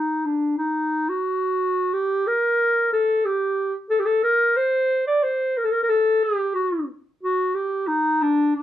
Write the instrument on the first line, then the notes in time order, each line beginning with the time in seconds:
clarinet
Already playing: D#4
0.25 D4
0.58 D#4
1.09 F#4
1.93 G4
2.27 A#4
2.93 A4
3.25 G4
3.90 A4
3.99 G4
4.05 A4
4.23 A#4
4.57 C5
5.07 D5
5.23 C5
5.58 A#4
5.64 A4
5.71 A#4
5.83 A#4
5.89 A4
6.23 G4
6.55 F#4
7.23 F#4
7.55 G4
7.87 D#4
8.22 D4
8.55 D#4